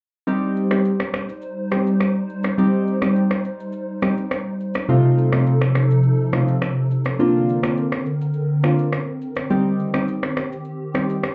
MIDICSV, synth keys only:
0, 0, Header, 1, 2, 480
1, 0, Start_track
1, 0, Tempo, 576923
1, 227, Time_signature, 4, 2, 24, 8
1, 9442, End_track
2, 0, Start_track
2, 0, Title_t, "Synth keys"
2, 0, Program_c, 0, 88
2, 225, Note_on_c, 0, 55, 93
2, 226, Note_on_c, 0, 60, 81
2, 229, Note_on_c, 0, 63, 80
2, 230, Note_on_c, 0, 67, 103
2, 561, Note_off_c, 0, 55, 0
2, 562, Note_off_c, 0, 60, 0
2, 563, Note_off_c, 0, 63, 0
2, 564, Note_off_c, 0, 67, 0
2, 589, Note_on_c, 0, 55, 68
2, 591, Note_on_c, 0, 60, 64
2, 592, Note_on_c, 0, 63, 66
2, 594, Note_on_c, 0, 67, 78
2, 768, Note_off_c, 0, 55, 0
2, 769, Note_off_c, 0, 60, 0
2, 770, Note_off_c, 0, 63, 0
2, 770, Note_off_c, 0, 67, 0
2, 1426, Note_on_c, 0, 55, 71
2, 1427, Note_on_c, 0, 60, 64
2, 1430, Note_on_c, 0, 63, 62
2, 1431, Note_on_c, 0, 67, 78
2, 1609, Note_off_c, 0, 55, 0
2, 1610, Note_off_c, 0, 60, 0
2, 1611, Note_off_c, 0, 63, 0
2, 1611, Note_off_c, 0, 67, 0
2, 2145, Note_on_c, 0, 55, 90
2, 2147, Note_on_c, 0, 60, 81
2, 2148, Note_on_c, 0, 63, 81
2, 2150, Note_on_c, 0, 67, 100
2, 2481, Note_off_c, 0, 55, 0
2, 2482, Note_off_c, 0, 60, 0
2, 2483, Note_off_c, 0, 63, 0
2, 2483, Note_off_c, 0, 67, 0
2, 2512, Note_on_c, 0, 55, 72
2, 2513, Note_on_c, 0, 60, 68
2, 2515, Note_on_c, 0, 63, 64
2, 2516, Note_on_c, 0, 67, 79
2, 2690, Note_off_c, 0, 55, 0
2, 2690, Note_off_c, 0, 60, 0
2, 2691, Note_off_c, 0, 63, 0
2, 2692, Note_off_c, 0, 67, 0
2, 3346, Note_on_c, 0, 55, 67
2, 3348, Note_on_c, 0, 60, 66
2, 3349, Note_on_c, 0, 63, 65
2, 3352, Note_on_c, 0, 67, 78
2, 3529, Note_off_c, 0, 55, 0
2, 3530, Note_off_c, 0, 60, 0
2, 3531, Note_off_c, 0, 63, 0
2, 3532, Note_off_c, 0, 67, 0
2, 4065, Note_on_c, 0, 48, 93
2, 4066, Note_on_c, 0, 57, 79
2, 4066, Note_on_c, 0, 60, 82
2, 4068, Note_on_c, 0, 63, 84
2, 4069, Note_on_c, 0, 65, 104
2, 4401, Note_off_c, 0, 48, 0
2, 4401, Note_off_c, 0, 57, 0
2, 4402, Note_off_c, 0, 60, 0
2, 4403, Note_off_c, 0, 63, 0
2, 4403, Note_off_c, 0, 65, 0
2, 4430, Note_on_c, 0, 48, 72
2, 4431, Note_on_c, 0, 57, 66
2, 4433, Note_on_c, 0, 60, 67
2, 4433, Note_on_c, 0, 63, 64
2, 4435, Note_on_c, 0, 65, 80
2, 4609, Note_off_c, 0, 48, 0
2, 4609, Note_off_c, 0, 57, 0
2, 4610, Note_off_c, 0, 60, 0
2, 4610, Note_off_c, 0, 63, 0
2, 4611, Note_off_c, 0, 65, 0
2, 5263, Note_on_c, 0, 48, 68
2, 5265, Note_on_c, 0, 57, 62
2, 5266, Note_on_c, 0, 60, 67
2, 5267, Note_on_c, 0, 63, 65
2, 5269, Note_on_c, 0, 65, 77
2, 5448, Note_off_c, 0, 48, 0
2, 5449, Note_off_c, 0, 57, 0
2, 5449, Note_off_c, 0, 60, 0
2, 5449, Note_off_c, 0, 63, 0
2, 5450, Note_off_c, 0, 65, 0
2, 5983, Note_on_c, 0, 58, 88
2, 5986, Note_on_c, 0, 60, 82
2, 5988, Note_on_c, 0, 62, 84
2, 5989, Note_on_c, 0, 65, 102
2, 6320, Note_off_c, 0, 58, 0
2, 6321, Note_off_c, 0, 60, 0
2, 6322, Note_off_c, 0, 62, 0
2, 6323, Note_off_c, 0, 65, 0
2, 6349, Note_on_c, 0, 58, 70
2, 6350, Note_on_c, 0, 60, 64
2, 6352, Note_on_c, 0, 62, 64
2, 6354, Note_on_c, 0, 65, 79
2, 6528, Note_off_c, 0, 58, 0
2, 6529, Note_off_c, 0, 60, 0
2, 6530, Note_off_c, 0, 62, 0
2, 6531, Note_off_c, 0, 65, 0
2, 7183, Note_on_c, 0, 58, 70
2, 7185, Note_on_c, 0, 60, 61
2, 7187, Note_on_c, 0, 62, 67
2, 7189, Note_on_c, 0, 65, 77
2, 7368, Note_off_c, 0, 58, 0
2, 7369, Note_off_c, 0, 60, 0
2, 7370, Note_off_c, 0, 62, 0
2, 7370, Note_off_c, 0, 65, 0
2, 7905, Note_on_c, 0, 55, 88
2, 7906, Note_on_c, 0, 60, 81
2, 7908, Note_on_c, 0, 63, 85
2, 7909, Note_on_c, 0, 67, 98
2, 8241, Note_off_c, 0, 55, 0
2, 8241, Note_off_c, 0, 60, 0
2, 8242, Note_off_c, 0, 63, 0
2, 8243, Note_off_c, 0, 67, 0
2, 8270, Note_on_c, 0, 55, 70
2, 8272, Note_on_c, 0, 60, 67
2, 8274, Note_on_c, 0, 63, 65
2, 8275, Note_on_c, 0, 67, 78
2, 8449, Note_off_c, 0, 55, 0
2, 8449, Note_off_c, 0, 60, 0
2, 8450, Note_off_c, 0, 63, 0
2, 8451, Note_off_c, 0, 67, 0
2, 9104, Note_on_c, 0, 55, 70
2, 9106, Note_on_c, 0, 60, 64
2, 9107, Note_on_c, 0, 63, 65
2, 9109, Note_on_c, 0, 67, 79
2, 9288, Note_off_c, 0, 55, 0
2, 9289, Note_off_c, 0, 60, 0
2, 9290, Note_off_c, 0, 63, 0
2, 9291, Note_off_c, 0, 67, 0
2, 9442, End_track
0, 0, End_of_file